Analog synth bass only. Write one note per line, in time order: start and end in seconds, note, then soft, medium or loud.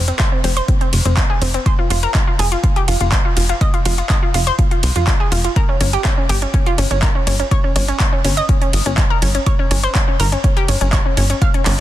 0.00 0.12 F1 loud
0.44 0.61 F1 loud
0.93 1.01 F1 loud
1.05 1.22 F1 medium
1.42 1.58 F1 loud
1.90 2.07 F1 loud
2.39 2.56 F1 loud
2.88 2.97 F1 loud
3.01 3.17 F1 loud
3.37 3.54 F1 loud
3.86 4.02 F1 loud
4.34 4.51 F1 loud
4.83 4.92 C2 loud
4.96 5.12 F1 medium
5.32 5.49 F1 loud
5.81 5.97 G1 loud
6.29 6.46 G1 loud
6.78 6.87 G1 medium
6.91 7.07 G1 loud
7.27 7.44 G1 loud
7.76 7.93 G1 loud
8.25 8.41 G1 loud
8.73 8.82 G1 loud
8.86 9.02 G1 medium
9.22 9.39 G1 loud
9.71 9.88 G1 loud
10.20 10.37 G1 loud
10.69 10.77 G1 medium
10.81 10.97 G1 loud
11.17 11.34 G1 loud
11.66 11.80 G1 loud